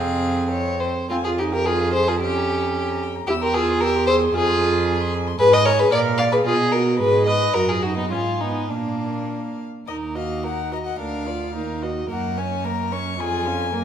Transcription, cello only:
Already playing: F2
1.10 F2
3.29 E2
4.34 F2
5.39 G#2
5.92 A#2
6.45 B2
6.99 G#2
7.55 F#2
8.12 G#2
8.70 A#2
9.88 D#2
10.99 D2
11.54 D#2
12.10 F#2
13.18 F2
13.73 F#2

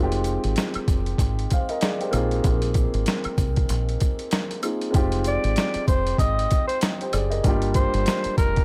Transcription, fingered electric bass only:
Already playing: F1
0.44 G#1
0.76 muted fingered electric bass stroke
0.88 F1
1.19 G#1
2.14 A#1
2.45 A#1
2.94 G#1
3.26 muted fingered electric bass stroke
3.38 C2
3.70 A#1
4.95 F1
5.44 G#1
5.76 muted fingered electric bass stroke
5.88 F1
6.19 G#1
7.14 F#1
7.45 G1
7.94 G1
8.26 muted fingered electric bass stroke
8.38 F1

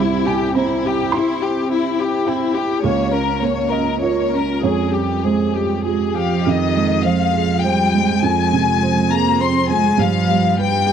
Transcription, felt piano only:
Already playing: C2 G3 E5
0.27 G#5
0.55 C4 C5 A#5
1.12 C6
2.27 G5
2.84 C#2 F5
3.42 A#3
3.72 D#5
4.02 F4 A#4 C#5
4.63 F2 C#5
5.24 G#3 C5
5.85 F4 G4
6.46 F2
6.76 G#3
7.05 C5
7.33 G#4
7.64 C5
7.94 G#3
8.22 F2
8.53 C3
8.83 C5
9.11 G#4
9.41 C5
9.70 G#3
9.98 G2
10.29 G3
10.59 B4
10.87 G4

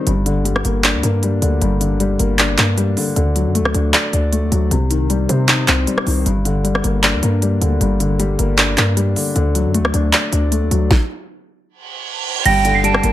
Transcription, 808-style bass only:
0.07 G1
0.65 G1
0.94 D2
1.03 G2
1.42 D2
1.62 G1
2.19 G1
2.58 G2
3.16 D2
3.46 F#2
3.60 D2
3.74 D2
4.13 D2
4.43 D#2
4.52 D2
4.71 C2
5.29 C3
5.68 C2
6.07 C2
6.26 G1
6.84 G1
7.14 D2
7.23 G2
7.62 D2
7.81 G1
8.39 G1
8.78 G2
9.36 D2
9.65 F#2
9.80 D2
9.94 D2
10.33 D2
10.62 D#2
10.71 D2
12.45 G1
13.03 G1

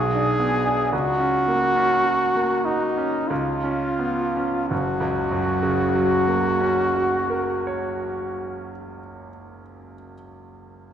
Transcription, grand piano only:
Already playing: B1
0.15 D4
0.40 B3
0.66 D4
0.93 C#2
1.20 C#4
1.48 A#3
1.76 C#4
2.05 F#4
2.36 A#3
2.66 F#4
2.97 C#4
3.30 C#2
3.64 C#4
3.99 B3
4.36 C#4
4.71 F#1
5.00 C#2
5.31 F#2
5.63 C#3
5.95 F#3
6.27 A#3
6.60 C#4
6.95 F#4
7.30 A#4
7.67 C#5

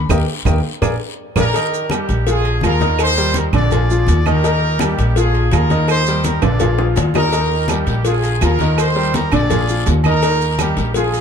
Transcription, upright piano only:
Already playing: B5
0.10 G4 A#4 D#5
0.47 G4 A#4 D#5
0.82 G#4 A#4 D5
1.36 G#4 A#4 D5
1.55 D#3 D#4 D#5
1.90 G3 G4 A#4
2.27 F3 F4 G#4
2.63 F3 F4 G#4
2.81 D#3 D#4 D#5
3.17 G3 G4 A#4
3.54 D3 D4 D5
3.72 F3 F4 G#4
3.91 F3 F4 G#4
4.26 D#3 D#4 D#5
4.44 D#3 D#4 D#5
4.80 G3 G4 A#4
5.17 F3 F4 G#4
5.52 F3 F4 G#4
5.71 D#3 D#4 D#5
6.08 G3 G4 A#4
6.43 D3 D4 D5
6.60 F3 F4 G#4
6.79 F3 F4 G#4
7.15 D#3 D#4 D#5
7.33 D#3 D#4 D#5
7.70 G3 G4 A#4
8.05 F3 F4 G#4
8.43 F3 F4 G#4
8.61 D#3 D#4 D#5
8.96 G3 G4 A#4
9.32 D3 D4 D5
9.51 F3 F4 G#4
9.70 F3 F4 G#4
10.06 D#3 D#4 D#5
10.24 D#3 D#4 D#5
10.60 G3 G4 A#4
10.96 F3 F4 G#4

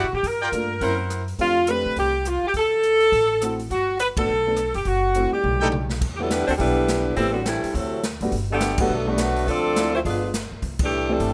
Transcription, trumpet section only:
0.41 F4 A#4 D5 G5
0.81 E4 A#4 C5 F#5
5.60 D#4 A4 B4 G5

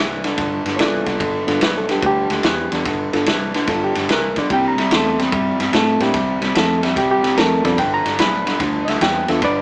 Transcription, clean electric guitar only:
Already playing: G2 E3
0.24 G2 D3
0.37 G2 D3
0.65 G2 D3
0.79 G2 E3
1.07 G2 D3
1.20 G2 D3
1.48 G2 D3
1.61 G2 E3
1.89 G2 D3
2.02 G2 D3
2.31 G2 D3
2.44 G2 E3
2.72 G2 D3
2.85 G2 D3
3.13 G2 D3
3.27 G2 E3
3.55 G2 D3
3.69 G2 D3
3.96 G2 D3
4.10 G2 E3
4.37 G2 D3
4.51 C3 G3
4.78 C3 G3
4.92 C3 A3
5.19 C3 G3
5.33 C3 G3
5.60 C3 G3
5.73 C3 A3
6.01 C3 G3
6.14 C3 G3
6.42 C3 G3
6.55 C3 A3
6.83 C3 G3
6.96 C3 G3
7.23 C3 G3
7.37 C3 A3
7.64 C3 G3
7.78 G2 D3
8.05 G2 D3
8.19 G2 E3
8.46 G2 D3
8.60 G2 D3
8.88 G2 D3
9.01 G2 E3
9.28 G2 D3
9.42 G2 D3

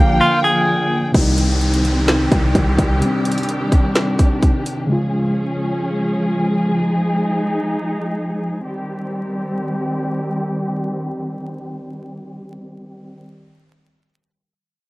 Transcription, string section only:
Already playing: D3 F3 A#3 G5
1.14 D#3 G3 C4 G4
3.02 D4
4.89 F3 G#3 C#4 G#4
6.77 D#4
8.64 D#3 G3 C4 G4

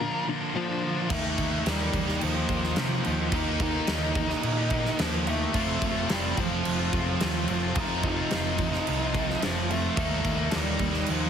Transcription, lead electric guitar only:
Already playing: A#4
0.55 F3 F4
1.12 A3 A4
1.68 G3 G4
2.23 F3 F4
3.34 D#4 D#5
3.62 D#4 D#5
5.00 F3 F4
5.29 A3 A4
6.11 G3 G4
6.39 F3 F4
7.78 D#4 D#5
8.06 D#4 D#5
9.44 F3 F4
9.71 A3 A4
10.55 G3 G4
11.11 F3 F4

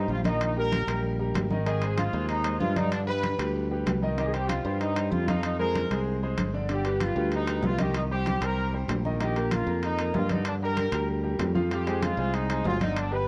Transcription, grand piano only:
Already playing: G3 G4 C5
0.25 D#3 D#4 D#5
0.57 G3 G4 A#4
0.87 G3 G4 A#4
1.19 G3 G4 A#4
1.51 D#3 D#4 D#5
1.66 D#3 D#4 D#5
1.83 G#3 G#4 C5
2.13 G#3 G#4 C5
2.45 G#3 G#4 C5
2.76 D3 D4 D5
3.07 G3 G4 B4
3.39 G3 G4 B4
3.71 G3 G4 B4
4.02 D#3 D#4 D#5
4.17 D#3 D#4 D#5
4.34 G3 G4 C5
4.65 G3 G4 C5
4.96 G3 G4 C5
5.28 F3 F4 F5
5.59 G#3 G#4 C5
5.90 G#3 G#4 C5
6.22 G#3 G#4 C5
6.53 D3 D4 D5
6.69 D3 D4 D5
6.85 G3 G4 B4
7.15 G3 G4 B4
7.48 G3 G4 B4
7.78 D#3 D#4 D#5
8.11 G3 G4 C5
8.42 G3 G4 C5
8.73 G3 G4 C5
9.05 D#3 D#4 D#5
9.21 D#3 D#4 D#5
9.37 A#3 A#4
9.68 A#3 A#4
9.99 A#3 A#4
10.30 D3 D4 D5
10.62 G3 G4 A#4
10.93 G3 G4 A#4
11.23 G3 G4 A#4
11.54 F3 F4 F5
11.70 F3 F4 F5
11.86 G#3 G#4 C5
12.18 G#3 G#4 C5
12.49 G#3 G#4 C5
12.80 D3 D4 D5
13.12 G3 G4 B4

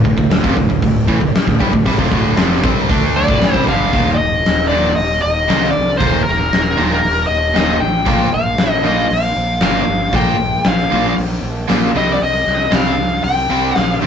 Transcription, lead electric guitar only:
3.16 D5
3.69 F5
4.14 D5 D#5
4.68 D5
4.96 D#5
5.22 D#5
5.71 D5
5.97 C5
6.24 A#4
7.27 D#5
7.80 G5
8.34 F5
8.86 D#5
9.13 F5
9.63 F5
10.16 G5
10.68 F5
11.97 D#5
12.13 D5
12.23 D#5
12.75 F5
13.24 G5
13.78 F5

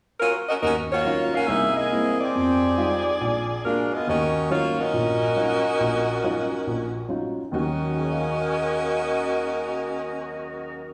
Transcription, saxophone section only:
0.20 F#3 C#4 F4 A#4
0.49 C#4 F#4 A#4 D#5
0.63 C#4 F#4 A#4 D#5
0.92 A#3 F4 F#4 C#5
1.35 C#4 F#4 A#4 F5
1.47 A#3 D#4 G#4 E5
1.76 A#3 E4 G#4 D#5
2.21 C4 G4 G#4 D5
3.65 G#3 D4 F4 A#4
3.94 B3 F4 G#4 D#5
4.09 C#4 F#4 A#4 D#5
4.51 A#3 F4 F#4 C#5
4.80 C#4 F#4 A#4 D#5
7.54 C#4 F#4 A#4 D#5

